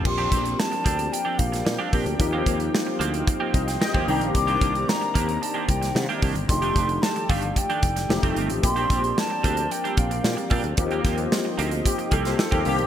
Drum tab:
CC |x---------------|----------------|----------------|----------------|
HH |-xxx-xxxx-xx--ox|x-xx--xxx-xx--ox|xxxx-xxxx-xx-xox|xxxx-xoxxxxx-xxx|
SD |----o------oo---|----o------oo---|----o------oo---|----o------oo---|
BD |o-o---o---o---o-|o-o-----o-o--o--|o-o---o---o---o-|o-o---o-o-o--o--|

CC |----------------|----------------|
HH |xxxx--xxxxxx-xox|xxxx--xxxxxx-xox|
SD |----o-------o---|--o-o------oo---|
BD |o-o---o---o---o-|o-o-----o-o--o--|